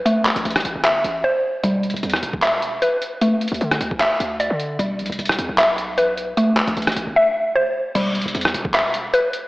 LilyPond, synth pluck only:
\new Staff \with { instrumentName = "Synth pluck" } { \time 4/4 \key e \minor \tempo 4 = 152 a2 e''4 c''4 | g2 e''4 b'4 | a2 e''4 d''4 | g2 e''4 b'4 |
a2 e''4 c''4 | g2 e''4 b'4 | }